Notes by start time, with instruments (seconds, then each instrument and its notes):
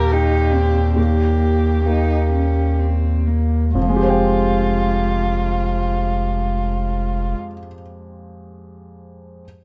Already playing: felt piano D#2 A#2, sub bass D#2, cello G4, violin A#4
0.11 cello D#4, violin G4
0.53 cello C4
0.96 felt piano D#2, cello A#3, violin G4
1.85 felt piano A#3, cello D#4
2.33 cello C#4
2.80 cello C4
3.27 cello A#3
3.75 sub bass F1, felt piano F2, cello G#3, violin F4
3.82 felt piano F3
3.89 felt piano G#3
3.96 felt piano G4
4.03 felt piano C5
4.10 felt piano G5